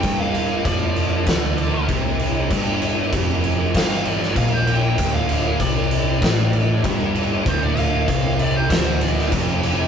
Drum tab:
CC |x-x-x-x-x-x-x-x-|x-x-x-x-x-x-x-x-|x-x-x-x-x-x-x-x-|x-x-x-x-x-x-x-x-|
SD |--------o-------|--------o--o----|--------o-------|--------o--o----|
BD |o---o---o---o---|o---o---o---o---|o---o---o---o---|o---o---o---o---|